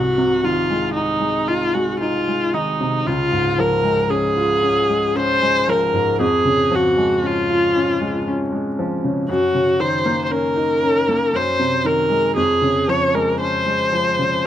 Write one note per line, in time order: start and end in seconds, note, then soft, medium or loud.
0.00 3.02 C2 medium
0.00 0.46 F#4 medium
0.18 0.59 C3 soft
0.44 0.85 D#3 soft
0.44 0.94 F4 medium
0.70 1.11 G#3 soft
0.94 1.49 D#4 medium
0.94 1.38 D#4 soft
1.20 1.63 G#3 soft
1.47 1.90 D#4 soft
1.47 1.76 F4 medium
1.74 2.17 G#3 soft
1.74 1.99 F#4 medium
2.00 2.44 D#4 soft
2.00 2.55 F4 medium
2.28 2.70 G#3 soft
2.54 2.96 D#3 soft
2.54 3.08 D#4 medium
2.80 3.06 C3 soft
3.07 6.17 C#2 medium
3.07 3.61 F4 medium
3.32 3.74 G#2 soft
3.58 4.00 F3 soft
3.58 4.12 A#4 medium
3.84 4.26 G#3 soft
4.09 4.52 C#4 soft
4.09 5.17 G#4 medium
4.37 4.79 F4 soft
4.62 5.04 C#4 soft
4.89 5.31 G#3 soft
5.15 5.57 C#4 soft
5.15 5.71 C5 medium
5.42 5.84 G#3 soft
5.67 6.10 F3 soft
5.67 6.21 A#4 medium
5.93 6.20 G#2 soft
6.20 9.24 F2 medium
6.20 6.76 G#4 medium
6.45 6.87 C#3 soft
6.71 7.13 F3 soft
6.75 7.28 F#4 medium
6.97 7.39 G#3 soft
7.22 7.64 C#4 soft
7.22 8.28 F4 medium
7.50 7.91 F4 soft
7.75 8.16 C#4 soft
8.01 8.42 G#3 soft
8.28 8.68 C#4 soft
8.52 8.93 G#3 soft
8.79 9.19 F3 soft
9.04 9.29 C#3 soft
9.29 11.31 F#2 medium
9.29 9.81 F#4 medium
9.55 9.96 C#3 soft
9.80 10.21 D#3 soft
9.80 10.24 C5 medium
10.06 10.47 A#3 soft
10.24 10.32 C5 soft
10.30 10.72 C#4 soft
10.30 11.37 A#4 medium
10.56 10.98 D#4 soft
10.83 11.24 C#4 soft
11.09 11.35 A#3 soft
11.33 12.34 F#2 medium
11.33 11.87 C5 medium
11.59 12.01 C3 soft
11.84 12.27 D#3 soft
11.84 12.36 A#4 medium
12.10 12.37 G#3 soft
12.36 14.47 F2 medium
12.36 12.91 G#4 medium
12.62 13.05 C#3 soft
12.88 13.31 F3 soft
12.88 13.16 C#5 medium
13.14 13.57 G#3 soft
13.14 13.40 A#4 medium
13.40 13.84 C#4 soft
13.40 14.47 C5 medium
13.65 14.09 G#3 soft
13.93 14.36 F3 soft
14.19 14.47 C#3 soft